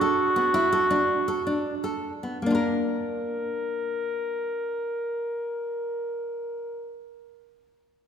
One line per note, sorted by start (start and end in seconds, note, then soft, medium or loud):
0.00 2.04 F#4 medium
0.00 0.27 A4 medium
0.36 0.49 B3 medium
0.54 0.67 E4 medium
0.73 0.86 A4 medium
0.91 1.17 D4 medium
1.28 1.41 A4 medium
1.47 1.74 D4 soft
1.84 2.12 A4 soft
2.23 2.37 B3 soft
2.42 7.00 A#3 soft
2.42 7.00 A#4 medium
2.46 7.04 D4 soft
2.51 2.54 F4 soft
2.55 7.12 A#4 soft